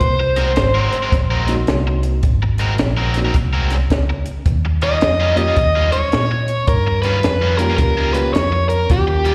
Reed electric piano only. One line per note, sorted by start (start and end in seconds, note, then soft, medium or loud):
1.47 2.19 A#3 medium
1.47 2.20 C4 medium
1.47 2.20 D#4 medium
1.47 2.20 F#4 medium
3.15 3.33 A#3 medium
3.15 3.33 C4 medium
3.15 3.34 D#4 medium
3.15 3.34 F#4 medium
5.36 5.55 A#3 medium
5.36 5.55 C#4 medium
5.36 5.55 F4 medium
5.36 5.56 G4 medium
7.59 8.11 A#3 medium
7.59 8.11 C#4 medium
7.59 8.12 F4 medium
7.59 8.12 G4 medium
8.14 8.33 A#3 medium
8.14 8.33 C#4 medium
8.14 8.33 F4 medium
8.14 8.34 G4 medium
8.90 9.35 A#3 medium
8.90 9.35 C#4 soft
8.90 9.35 F4 soft
8.90 9.35 G4 medium